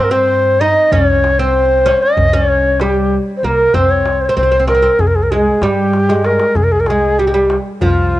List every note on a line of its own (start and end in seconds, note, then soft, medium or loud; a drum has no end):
0.00 0.72 G2 medium
0.00 0.12 A#4 medium
0.11 0.60 C4 medium
0.11 0.62 C5 medium
0.29 darbuka ka soft
0.60 0.92 D#4 medium
0.60 0.94 D#5 medium
0.92 1.91 C2 medium
0.92 1.39 C#4 medium
0.92 1.40 C#5 medium
0.92 darbuka dum medium
1.24 darbuka tek medium
1.39 1.85 C4 medium
1.39 2.04 C5 medium
1.55 darbuka ka soft
1.86 2.32 C#4 medium
1.86 darbuka tek medium
2.02 2.36 D#5 medium
2.17 3.16 C2 medium
2.17 darbuka dum medium
2.33 2.82 C#4 medium
2.33 2.83 C#5 medium
2.49 darbuka ka soft
2.80 3.14 G3 medium
2.80 3.16 G4 medium
2.80 darbuka tek medium
3.11 darbuka ka soft
3.37 3.46 C5 medium
3.43 3.68 C2 medium
3.43 3.76 A#3 medium
3.43 3.76 A#4 medium
3.43 darbuka ka soft
3.74 4.23 C2 medium
3.74 4.28 C4 medium
3.74 3.92 C5 medium
3.74 darbuka dum medium
3.90 4.22 C#5 medium
4.05 darbuka tek medium
4.21 4.26 C5 medium
4.21 4.29 C#5 medium
4.27 4.36 C4 medium
4.27 4.36 C5 medium
4.37 4.86 C2 medium
4.37 4.42 C4 medium
4.37 4.66 C5 medium
4.37 darbuka ka soft
4.43 4.51 C4 soft
4.52 4.58 C4 soft
4.60 4.66 C4 soft
4.68 4.73 C4 soft
4.68 5.02 A#4 medium
4.68 darbuka tek medium
4.75 4.81 C4 soft
4.82 4.89 C4 medium
4.99 5.49 C2 medium
4.99 5.09 G#4 medium
4.99 darbuka dum medium
5.07 5.17 A#4 medium
5.16 5.24 G#4 medium
5.23 5.32 A#4 medium
5.31 5.62 G#3 medium
5.31 5.64 G#4 medium
5.61 6.36 G2 medium
5.61 6.09 G3 medium
5.61 6.27 G4 medium
5.61 darbuka tek medium
5.93 darbuka tek soft
6.09 6.53 G#3 medium
6.09 darbuka ka medium
6.25 6.58 A#4 medium
6.25 darbuka tek medium
6.40 darbuka ka medium
6.55 7.56 C2 medium
6.55 6.65 G#4 medium
6.55 darbuka dum medium
6.64 6.74 A#4 medium
6.72 6.82 G#4 medium
6.80 6.89 A#4 medium
6.86 7.19 G#3 medium
6.86 7.20 G#4 medium
6.86 darbuka tek medium
7.19 7.26 G3 medium
7.19 7.55 G4 medium
7.27 7.34 G#3 medium
7.34 7.54 G3 medium
7.50 darbuka tek medium
7.81 8.20 C2 medium
7.81 8.20 F3 medium
7.81 8.20 F4 medium
7.81 darbuka dum medium
8.14 darbuka ka soft